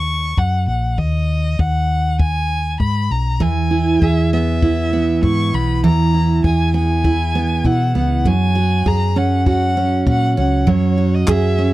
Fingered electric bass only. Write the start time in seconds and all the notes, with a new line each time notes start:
Already playing: D#2
0.38 F#2
0.67 A#1
0.98 D#2
1.59 D#2
2.80 G#2
3.10 B1
3.41 E2
4.02 E2
5.22 G#2
5.53 B1
5.83 E2
6.44 E2
7.65 B2
7.95 C#2
8.25 F#2
8.86 F#2
10.07 A#2
10.38 C#2
10.67 F#2
11.28 F#2